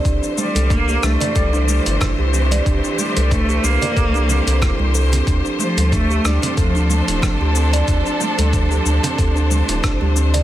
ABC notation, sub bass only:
X:1
M:4/4
L:1/16
Q:"Swing 16ths" 1/4=92
K:Dm
V:1 name="Sub bass" clef=bass
C,, z2 C,,3 C,, z C,,3 G,,, z C,,3 | C,, z2 C,,3 C,, z C,,3 C,,2 C,,3 | D,, z2 D,,3 D,, z D,,3 D,,, z D,,3 | D,, z2 D,,3 D,, z D,,3 D,,, z D,,3 |]